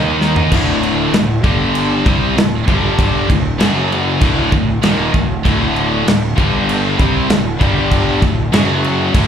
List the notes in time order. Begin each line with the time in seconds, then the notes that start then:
Already playing: D#2 D#3 A#3 D#4
0.21 snare
0.36 floor tom
0.51 D1 D2 A2 D3, kick, crash
0.83 crash
1.12 D1 D2 A2, snare, crash
1.43 G1 G2 D3 G3, kick, crash
1.75 crash
2.05 C2 C3 G3 C4, kick, crash
2.36 D1 D2 A2, snare, crash
2.68 G1 G2 D3 G3, kick, crash
2.99 kick, crash
3.28 D1 D2 A2, kick, crash
3.59 F#1 F#2 C#3 F#3, snare, crash
3.92 crash
4.21 D1 D2 A2 D3, kick, crash
4.52 D1 D2 A2, kick, crash
4.82 D#1 D#2 A#2 D#3, snare, crash
5.13 D1 D2 A2, kick, crash
5.44 D1 D2 A2 D3, kick, crash
5.76 crash
6.06 D1 D2 A2, snare, crash
6.36 G1 G2 D3 G3, kick, crash
6.69 crash
6.97 C2 C3 G3 C4, kick, crash
7.29 D1 D2 A2, snare, crash
7.60 G1 G2 D3 G3, kick, crash
7.91 kick, crash
8.22 D1 D2 A2, kick, crash
8.52 F#1 F#2 C#3 F#3, snare, crash
8.84 crash
9.14 D1 D2 A2 D3, kick, crash